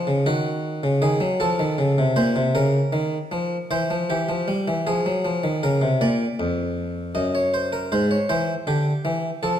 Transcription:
Already playing: F4
0.07 C#3
0.26 D#3 F#4
0.83 C#3
1.02 D#3 G#4
1.20 F#3
1.40 F3 A4
1.59 D#3
1.78 C#3
1.98 C3
2.16 A#2 C5
2.36 C3
2.55 C#3 A#4
2.93 D#3
3.32 F3
3.71 E3 C5
3.90 F3
4.10 E3 G4
4.29 F3
4.48 G3
4.68 E3
4.87 F3 G#4
5.06 F#3
5.25 F3
5.44 D#3
5.63 C#3 A#4
5.81 C3
6.01 A#2 D5
6.40 F2
7.15 F#2 D#5
7.35 C#5
7.54 C5
7.73 A#4
7.92 G#2 C5
8.11 C#5
8.29 E3 C5
8.67 D3 G4
9.05 E3
9.43 F3 A4

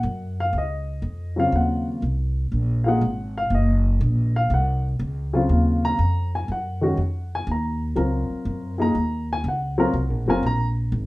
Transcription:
Already playing: F#5
0.03 F#2
0.40 F5
0.53 C#2
0.58 D#5
1.02 F2
1.36 C#3 F#3 C4 F4 F5
1.52 D#2 F#5
2.02 C2
2.52 A#1
2.84 F3 A#3 D#4 G#4 F5
2.88 F#5
3.01 G#1
3.38 F5
3.50 F#1
3.54 D#5
4.01 A#1
4.36 F5
4.50 C2 F#5
4.99 C#2
5.33 C#3 F#3 C4 F4
5.49 D#2
5.85 A#5
5.99 F2
6.35 G#5
6.48 F#2 F#5
6.81 D#3 G#3 C#4 F#4
6.97 F2
7.35 G#5
7.47 D#2
7.51 A#5
7.96 C#2 F#3 C4 F4 A#4
8.30 muted upright bass stroke
8.45 F#2
8.78 F3 A#3 D#4 G#4 A#5
8.95 D#2
9.33 G#5
9.44 C#2
9.48 F#5
9.78 F#3 C4 F4 A#4
9.93 C2
10.09 A#1
10.26 F#1 F#3 C4 F4 A#4 G#5
10.43 A#1 A#5
10.92 G#1

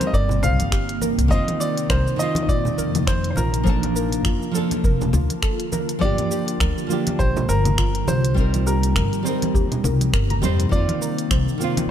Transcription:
Already playing: C3 G3 A#3 C4 D#4 A#4
0.01 closed hi-hat, high conga, cabasa
0.07 D#5
0.13 G1 A#4 D5, kick, cabasa
0.29 low conga, cabasa
0.43 C2 C5 F5, low conga, cabasa
0.60 G1, closed hi-hat, high conga, cabasa
0.72 G4, finger snap, kick, cabasa
0.89 closed hi-hat
1.01 A#4, high conga, cabasa
1.18 C2, closed hi-hat, cabasa
1.28 F2 C3 D#3 F3 A#3 C4 D#4 C5 D#5, kick, cabasa
1.34 F4
1.48 closed hi-hat, high conga
1.60 F4 D5, cabasa
1.78 closed hi-hat, cabasa
1.90 C2 A#4 C5, finger snap, kick, high conga, cabasa
2.07 cabasa
2.16 D#3 A#3 C5 D#5, cabasa
2.20 C4 F4
2.35 closed hi-hat, high conga, cabasa
2.43 D#5
2.48 A#2 F4 D5, kick, cabasa
2.65 low conga, cabasa
2.78 F2 A#4, cabasa
2.95 closed hi-hat, high conga, low conga, cabasa
3.07 C5, finger snap, kick, cabasa
3.24 closed hi-hat
3.31 C5
3.36 A#1 F4 A#4, high conga, cabasa
3.54 closed hi-hat, cabasa
3.63 D3 F3 A#3 D4 F4 A4 A5, kick, cabasa
3.69 A5
3.83 closed hi-hat, high conga
3.96 A#4, cabasa
4.13 closed hi-hat, cabasa
4.25 F1 F4, finger snap, kick, high conga, cabasa
4.43 cabasa
4.51 F3 A#3 D4 A4, cabasa
4.57 A4
4.71 closed hi-hat, high conga, cabasa
4.84 F1 A#4, kick, cabasa
5.01 low conga, cabasa
5.13 D2 F4, low conga, cabasa
5.30 closed hi-hat, high conga, cabasa
5.43 A4, finger snap, kick, cabasa
5.60 closed hi-hat
5.72 A#4, high conga, cabasa
5.89 closed hi-hat, cabasa
5.99 G1 F3 G3 A#3 D4 F4 D5, kick, cabasa
6.05 G4
6.18 closed hi-hat, high conga
6.31 G4, cabasa
6.48 closed hi-hat, cabasa
6.60 D2 A#4, finger snap, kick, high conga, cabasa
6.78 cabasa
6.87 F3 A#3 F4, cabasa
6.91 D4 G4
7.07 closed hi-hat, high conga, cabasa
7.19 A#1 G4 C5, kick, cabasa
7.37 low conga, cabasa
7.49 G1 A#4, cabasa
7.65 closed hi-hat, high conga, low conga, cabasa
7.78 F4, finger snap, kick, cabasa
7.95 closed hi-hat
8.08 C2 G4 C5, high conga, cabasa
8.25 closed hi-hat, cabasa
8.34 C3 G3 A#3 C4 D#4 C5, kick, cabasa
8.40 A#4
8.54 closed hi-hat, high conga, cabasa
8.66 G4 A#4, cabasa
8.83 closed hi-hat, cabasa
8.96 G1 A#4, finger snap, kick, high conga, cabasa
9.13 closed hi-hat, cabasa
9.23 G3 C4 D#4 C5, cabasa
9.28 A#4
9.42 closed hi-hat, high conga, cabasa
9.54 D#2 G4, kick, cabasa
9.72 closed hi-hat, low conga, cabasa
9.84 C2 A#4, low conga, cabasa
10.01 closed hi-hat, high conga, cabasa
10.13 G1 A#4, finger snap, kick, cabasa
10.30 A#5, closed hi-hat, low conga
10.42 F2 G3 C4 D#4 C5, high conga, cabasa
10.60 closed hi-hat, cabasa
10.69 F2 D#3 F3 A#3 F4 D5, kick, cabasa
10.73 C4 F4
10.89 closed hi-hat, high conga
11.02 A#4, cabasa
11.19 closed hi-hat, cabasa
11.31 C2 C5, finger snap, kick, high conga, cabasa
11.48 cabasa
11.58 D#3 A#3 C4 F4, cabasa
11.64 F4
11.77 closed hi-hat, high conga, cabasa

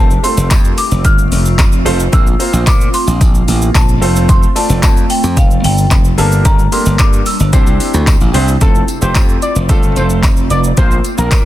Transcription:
Already playing: F1 A3 C4 F4 A5
0.11 shaker
0.23 A3 C4 F4 A4 C5 C6, open hi-hat, tambourine, shaker
0.37 F1, shaker
0.51 F2, kick, clap, closed hi-hat, tambourine, shaker
0.65 shaker
0.77 D6, open hi-hat, tambourine, shaker
0.91 F1, shaker
1.05 G1 F6, kick, closed hi-hat, tambourine, shaker
1.18 shaker
1.32 F1, open hi-hat, tambourine, shaker
1.45 shaker
1.59 F1, kick, clap, closed hi-hat, tambourine, shaker
1.72 shaker
1.85 F1 A3 C4 F4 A4 C5, open hi-hat, shaker
2.00 shaker
2.12 A#1 A#3 C4 F4 A#4 C5 E6, kick, closed hi-hat, tambourine, shaker
2.27 shaker
2.39 A#3 C4 F4 A#4 C5, open hi-hat, tambourine, shaker
2.53 A#1, shaker
2.67 A#2 D6, kick, clap, closed hi-hat, tambourine, shaker
2.81 shaker
2.94 C6, open hi-hat, tambourine, shaker
3.07 A#1, shaker
3.21 A#1, kick, closed hi-hat, tambourine, shaker
3.35 shaker
3.48 A1, open hi-hat, tambourine, shaker
3.62 shaker
3.75 A#1 A5, kick, clap, closed hi-hat, tambourine, shaker
3.89 shaker
4.01 F1 A3 C4 F4 A4 C5, open hi-hat, shaker
4.16 shaker
4.29 C6, kick, closed hi-hat, tambourine, shaker
4.43 shaker
4.56 A3 C4 F4 A4 D5 A5, open hi-hat, tambourine, shaker
4.69 F1, shaker
4.83 F2 A5, kick, clap, closed hi-hat, tambourine, shaker
4.97 shaker
5.10 G5, open hi-hat, tambourine, shaker
5.24 F2, shaker
5.37 F1 F5, kick, closed hi-hat, tambourine, shaker
5.51 shaker
5.64 G1 G5, open hi-hat, tambourine, shaker
5.78 shaker
5.91 F1, kick, clap, closed hi-hat, tambourine, shaker
6.04 shaker
6.18 G1 A#3 D4 G4 A4 A#4 A5, open hi-hat, tambourine, shaker
6.32 shaker
6.45 G1 A#5, kick, closed hi-hat, tambourine, shaker
6.59 shaker
6.72 A#3 D4 G4 A4 A#4 C6, open hi-hat, tambourine, shaker
6.86 G1, shaker
6.99 G2 D6, kick, clap, closed hi-hat, tambourine, shaker
7.13 shaker
7.26 E6, open hi-hat, tambourine, shaker
7.40 G1, shaker
7.53 C2 C4 D4 E4 G4 C5, kick, closed hi-hat, tambourine, shaker
7.67 C2, shaker
7.80 open hi-hat, tambourine, shaker
7.94 D2, shaker
8.07 kick, clap, closed hi-hat, tambourine, shaker
8.20 A1, shaker
8.34 C2 C4 D4 E4 G4 C5, open hi-hat, tambourine, shaker
8.48 shaker
8.61 F1 A3 C4 F4 A4, kick, closed hi-hat, tambourine, shaker
8.75 shaker
8.88 closed hi-hat, tambourine, shaker
9.01 F1 A3 C4 F4 G4 C5, shaker
9.15 kick, clap, closed hi-hat, tambourine, shaker
9.29 shaker
9.42 D5, closed hi-hat, tambourine, shaker
9.56 F1, shaker
9.69 G1 A3 C4 F4 A4, kick, closed hi-hat, tambourine, shaker
9.83 shaker
9.96 F1 C5, closed hi-hat, tambourine, shaker
10.10 shaker
10.23 F1, kick, clap, closed hi-hat, tambourine, shaker
10.37 shaker
10.50 F1 D5, closed hi-hat, tambourine, shaker
10.64 shaker
10.77 A#1 A#3 C4 F4 A#4 C5, kick, closed hi-hat, tambourine, shaker
10.91 shaker
11.04 closed hi-hat, tambourine, shaker
11.18 A#1 A#3 C4 F4 A#4, shaker
11.31 A#2, kick, clap, closed hi-hat, tambourine, shaker

